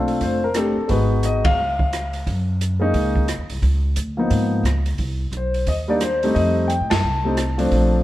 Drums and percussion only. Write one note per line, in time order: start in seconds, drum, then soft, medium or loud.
0.08 open hi-hat soft
0.21 kick soft
0.21 open hi-hat soft
0.54 cross-stick medium
0.54 closed hi-hat medium
0.89 kick soft
0.89 open hi-hat soft
1.23 closed hi-hat soft
1.45 kick medium
1.45 ride medium
1.79 kick soft
1.93 cross-stick medium
1.93 closed hi-hat soft
2.13 open hi-hat soft
2.27 kick soft
2.27 open hi-hat soft
2.61 closed hi-hat soft
2.94 kick soft
2.94 open hi-hat soft
3.16 kick soft
3.28 cross-stick medium
3.28 closed hi-hat soft
3.50 open hi-hat soft
3.62 kick soft
3.62 open hi-hat soft
3.96 closed hi-hat soft
4.30 kick soft
4.30 open hi-hat soft
4.65 cross-stick medium
4.65 closed hi-hat soft
4.86 open hi-hat soft
4.98 kick soft
4.98 open hi-hat soft
5.33 closed hi-hat medium
5.54 open hi-hat soft
5.67 kick soft
5.67 open hi-hat soft
6.01 cross-stick medium
6.01 closed hi-hat soft
6.23 open hi-hat soft
6.36 kick soft
6.36 open hi-hat soft
6.70 closed hi-hat soft
6.91 snare medium
6.91 ride medium
7.37 cross-stick medium
7.37 closed hi-hat soft
7.59 open hi-hat soft
7.71 kick soft
7.71 open hi-hat soft